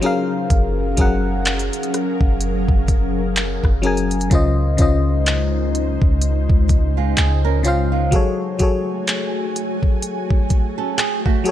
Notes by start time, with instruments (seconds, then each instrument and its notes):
0.01 fm electric piano F#3 C#4 G#4 A#4, ambient pad F#3 C#4 G#4 A#4, closed hi-hat
0.06 fm electric piano F5
0.50 808-style bass F#1, kick, closed hi-hat
0.97 808-style bass F#1, fm electric piano F#3 C#4 G#4 A#4, kick, closed hi-hat
1.01 fm electric piano F#5
1.45 clap, closed hi-hat
1.59 closed hi-hat
1.73 closed hi-hat
1.83 closed hi-hat
1.94 cross-stick, closed hi-hat
2.21 808-style bass F#1, kick
2.41 closed hi-hat
2.69 808-style bass F#1, kick
2.88 kick, closed hi-hat
3.36 clap, closed hi-hat
3.64 808-style bass F#1, kick, cross-stick
3.82 fm electric piano F#3 C#4 G#4 A#4, closed hi-hat, open hi-hat
3.87 fm electric piano G#5
3.97 closed hi-hat
4.11 closed hi-hat
4.21 closed hi-hat
4.30 808-style bass C#2, fm electric piano C#3 C#4 F4 C5, ambient pad C#3 G#3 D#4 C5, kick, closed hi-hat
4.35 fm electric piano D#5
4.77 808-style bass C#2, fm electric piano C#3 C#4 F4 C5, kick, closed hi-hat
4.82 fm electric piano D#5
5.26 clap, closed hi-hat
5.75 closed hi-hat
6.02 808-style bass C#2, kick
6.22 closed hi-hat
6.50 808-style bass C#2, kick
6.69 kick, closed hi-hat
6.97 nylon-string guitar G#3 F4
7.17 808-style bass C#2, nylon-string guitar C4 G#4, clap, closed hi-hat
7.45 nylon-string guitar C#4 A#4
7.63 fm electric piano C#3 C#4 F4 C5, nylon-string guitar C4 G#4, closed hi-hat
7.68 fm electric piano F5
7.92 nylon-string guitar G#3 F4
8.11 fm electric piano F#3 F#4 G#4 A4, ambient pad A3 F#4 G#5, kick, closed hi-hat
8.16 fm electric piano C#5
8.59 fm electric piano F#3 F#4 G#4 A4, kick, closed hi-hat
8.63 fm electric piano C#5
9.07 clap, closed hi-hat
9.56 closed hi-hat
9.83 kick
10.02 closed hi-hat
10.31 kick
10.50 kick, closed hi-hat
10.78 nylon-string guitar C#4 A4
10.98 nylon-string guitar C4 G#4, clap, closed hi-hat
11.26 nylon-string guitar A3 F#4, kick
11.44 fm electric piano F#3 F#4 G#4 A4, closed hi-hat